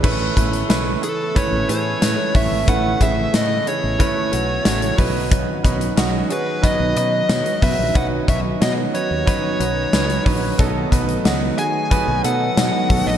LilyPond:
<<
  \new Staff \with { instrumentName = "Lead electric guitar" } { \time 4/4 \key a \lydian \tempo 4 = 91 r4. a'8 cis''8 cis''4 e''8 | fis''8 e''8 dis''8 cis''8 cis''4. r8 | r4. b'8 dis''8 dis''4 e''8 | fis''8 e''8 dis''8 cis''8 cis''4. r8 |
r4. gis''4 fis''4~ fis''16 dis''16 | }
  \new Staff \with { instrumentName = "Grand piano" } { \time 4/4 \key a \lydian <a cis' e' b'>8 <a cis' e' b'>8 <a cis' e' b'>8 <a cis' e' b'>8 <a cis' e' b'>8 <a cis' e' gis'>8 <a cis' e' b'>8 <a cis' e' cis''>8 | <a cis' e' b'>8 <a cis' e' gis'>8 <a cis' e' b'>8 <a cis' e' gis'>8 <a cis' e' b'>8 <a cis' e' fis'>8 <a cis' e' fis'>8 <fis cis' dis' b'>8~ | <fis cis' dis' b'>8 <fis cis' dis' b'>8 <fis cis' dis' fis'>8 <fis cis' dis' gis'>8 <fis cis' dis' b'>8 <fis cis' dis' b'>8 <fis cis' dis' b'>8 <fis cis' dis' b'>8 | <fis cis' dis' b'>8 <fis cis' dis' cis''>8 <fis cis' dis' fis'>8 <fis cis' dis' b'>8 <fis cis' dis' b'>8 <fis cis' dis' b'>8 <fis cis' dis' b'>8 <fis cis' dis' b'>8 |
<fis b dis' a'>8 <fis b dis' b'>8 <fis b dis' fis'>8 <fis b dis' gis'>8 <fis b dis' b'>8 <fis b dis' a'>8 <fis b dis' fis'>8 <fis b dis' a'>8 | }
  \new Staff \with { instrumentName = "Analog synth pad" } { \time 4/4 \key a \lydian << { <cis e e'>1~ | <cis e e'>2.~ <cis e e'>8 <dis fis fis'>8~ | <dis fis fis'>1~ | <dis fis fis'>1~ |
<dis fis fis'>1 | } \\ { <a b>1~ | <a b>2.~ <a b>8 cis'8~ | cis'2.~ cis'8 cis'8~ | cis'1 |
a1 | } >> }
  \new Staff \with { instrumentName = "Fretless electric bass" } { \clef bass \time 4/4 \key a \lydian a,,8 a,,8 b,,8 r8. a,,16 a,8 a,16 r16 a,,16 gis,,16 | a,,8 a,,8 a,8 r16 a,,16 r8 b,,8 a,,8 b,,8~ | b,,8 b,,8 b,,8 r8. b,,16 b,8 b,16 r16 b,16 ais,,16 | b,,8 b,,8 b,8 r16 dis,16 r8 b,,8 cis,8 ais,,8 |
b,,8 b,,8 cis,8 r8. b,,16 b,8 b,16 r16 b,,16 ais,,16 | }
  \new DrumStaff \with { instrumentName = "Drums" } \drummode { \time 4/4 <cymc bd>8 <hh bd>16 hh16 <hh sn>8 hh8 <hh bd>8 hh8 <hh sn>8 <hho bd>8 | <hh bd>8 <hh bd>8 <hh sn>8 hh8 <hh bd>8 hh8 <hh sn>16 hh16 <hho bd>8 | <hh bd>8 <hh bd>16 hh16 <hh sn>8 hh8 <hh bd>8 hh8 <hh sn>16 hh16 <hho bd>8 | <hh bd>8 <hh bd>8 <hh sn>8 hh8 <hh bd>8 hh8 <hh sn>16 hh16 <hho bd>8 |
<hh bd>8 <hh bd>16 hh16 <hh sn>8 hh8 <hh bd>8 hh8 <hh sn>8 <hho bd>8 | }
>>